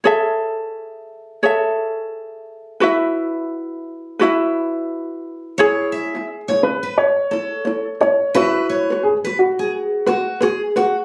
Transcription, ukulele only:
X:1
M:4/4
L:1/16
Q:"Swing 16ths" 1/4=87
K:Alyd
V:1 name="Ukulele"
[GAce]8 [GAce]8 | [EFBe]8 [EFBe]8 | [EGc]3 [Ec]2 [Ec]2 z3 [Ec]2 [Ec]2 [Ec]2 | [EFBe]3 [FB]2 [FB]2 z3 [FB]2 [FB]2 [FB]2 |]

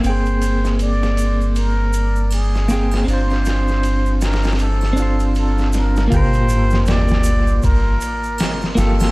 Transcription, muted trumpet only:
X:1
M:4/4
L:1/8
Q:"Swing 16ths" 1/4=79
K:Gm
V:1 name="Muted trumpet"
c2 d2 B2 _A2 | c3 B A2 A B | c2 d2 B3 z |]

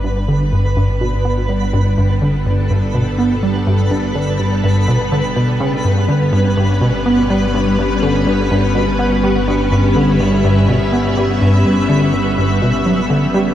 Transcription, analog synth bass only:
X:1
M:4/4
L:1/8
Q:1/4=124
K:Glyd
V:1 name="Analog synth bass" clef=bass
G,, D, G,, G,, B,, B, G, G,, | G,, D, G,, G,, B,, B, G, G,, | G,, D, G,, G,, B,, D, B,, C, | G,, D, G,, G,, B,, B, G, G,, |
G,, D, G,, G,, B,, B, G, G,, | G,, D, G,, G,, B,, B, G, G,, | G,, D, G,, G,, B,, F, D, G, |]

